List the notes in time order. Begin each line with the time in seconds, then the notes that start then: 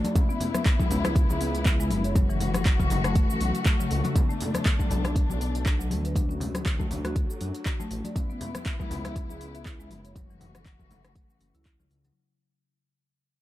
Already playing: F#3 D4
0.04 D5, closed hi-hat, high conga, cabasa
0.15 B3 C#4 E4, kick, closed hi-hat, high conga, low conga, cabasa
0.29 B3, cabasa
0.40 open hi-hat, low conga, cabasa
0.54 cross-stick, closed hi-hat, high conga, cabasa
0.66 kick, clap, closed hi-hat, cabasa
0.79 G#3, kick, high conga, cabasa
0.90 C#2 C#4, open hi-hat, low conga, cabasa
1.04 E4, cross-stick, closed hi-hat, high conga, cabasa
1.15 kick, closed hi-hat, low conga, cabasa
1.29 C#2 G#4, high conga, cabasa
1.41 C#4, open hi-hat, cabasa
1.55 closed hi-hat, cabasa
1.66 E4, kick, clap, cabasa
1.80 G#3, cabasa
1.90 F#1, open hi-hat, high conga, cabasa
2.04 C#5, closed hi-hat, cabasa
2.15 E3 F#3 A3 F#4, kick, closed hi-hat, high conga, low conga, cabasa
2.29 E3, cabasa
2.40 open hi-hat, low conga, cabasa
2.54 cross-stick, closed hi-hat, high conga, cabasa
2.66 kick, clap, closed hi-hat, cabasa
2.79 C#3, kick, high conga, cabasa
2.90 F#1 F#3, open hi-hat, low conga, cabasa
3.04 A3, cross-stick, closed hi-hat, high conga, cabasa
3.15 kick, closed hi-hat, cabasa
3.30 C#4, cabasa
3.41 B1 F#3, open hi-hat, cabasa
3.55 closed hi-hat, cabasa
3.66 A3, kick, clap, cabasa
3.80 C#3, high conga, cabasa
3.91 C#2, open hi-hat, cabasa
4.04 F#4, closed hi-hat, high conga, cabasa
4.16 B3 D4, kick, closed hi-hat, high conga, low conga, cabasa
4.29 A3, cabasa
4.41 open hi-hat, low conga, cabasa
4.54 cross-stick, closed hi-hat, high conga, cabasa
4.66 kick, clap, closed hi-hat, cabasa
4.79 F#3, kick, high conga, cabasa
4.90 B1 B3, open hi-hat, low conga, cabasa
5.04 D4, cross-stick, closed hi-hat, high conga, cabasa
5.16 kick, closed hi-hat, low conga, cabasa
5.29 B1 F#4, high conga, cabasa
5.41 B3, open hi-hat, cabasa
5.55 closed hi-hat, cabasa
5.66 D4, kick, clap, cabasa
5.79 F#3, cabasa
5.91 D2, open hi-hat, high conga, cabasa
6.04 B4, closed hi-hat, cabasa
6.15 F#3 D4, kick, closed hi-hat, high conga, low conga, cabasa
6.29 C#4, cabasa
6.40 open hi-hat, low conga, cabasa
6.54 cross-stick, closed hi-hat, high conga, cabasa
6.66 kick, clap, closed hi-hat, cabasa
6.79 A3, kick, high conga, cabasa
6.91 D2 D4, open hi-hat, low conga, cabasa
7.05 F#4, cross-stick, closed hi-hat, high conga, cabasa
7.16 kick, closed hi-hat, cabasa
7.30 A4, cabasa
7.41 F#2 D4, open hi-hat, cabasa
7.55 closed hi-hat, cabasa
7.66 F#4, kick, clap, cabasa
7.80 A3, high conga, cabasa
7.91 A1, open hi-hat, cabasa
8.04 D5, closed hi-hat, high conga, cabasa
8.16 B3 C#4 E4, kick, closed hi-hat, high conga, low conga, cabasa
8.30 B3, cabasa
8.41 open hi-hat, low conga, cabasa
8.55 cross-stick, closed hi-hat, high conga, cabasa
8.66 kick, clap, closed hi-hat, cabasa
8.80 G#3, kick, high conga, cabasa
8.91 C#2 C#4, open hi-hat, low conga, cabasa
9.04 E4, cross-stick, closed hi-hat, high conga, cabasa
9.16 kick, closed hi-hat, low conga, cabasa
9.29 C#2 G#4, high conga, cabasa
9.41 C#4, open hi-hat, cabasa
9.55 closed hi-hat, cabasa
9.66 E4, kick, clap, cabasa
9.80 G#3, cabasa
9.90 F#1, open hi-hat, high conga, cabasa
10.05 C#5, closed hi-hat, cabasa
10.15 E3 F#3 A3 F#4, kick, closed hi-hat, high conga, low conga, cabasa
10.30 E3, cabasa
10.41 open hi-hat, low conga, cabasa
10.55 cross-stick, closed hi-hat, high conga, cabasa
10.66 kick, clap, closed hi-hat, cabasa
10.79 C#3, kick, high conga, cabasa
10.90 F#1 F#3, open hi-hat, low conga, cabasa
11.05 A3, cross-stick, closed hi-hat, high conga, cabasa
11.16 kick, closed hi-hat, cabasa
11.30 C#4, cabasa
11.40 F#1 C#4, open hi-hat, cabasa
11.54 C#2 E4, closed hi-hat, cabasa
11.65 E4, kick, clap, cabasa
11.80 C#3, high conga, cabasa
11.90 C#2, open hi-hat, cabasa
12.05 F#3, closed hi-hat, high conga, cabasa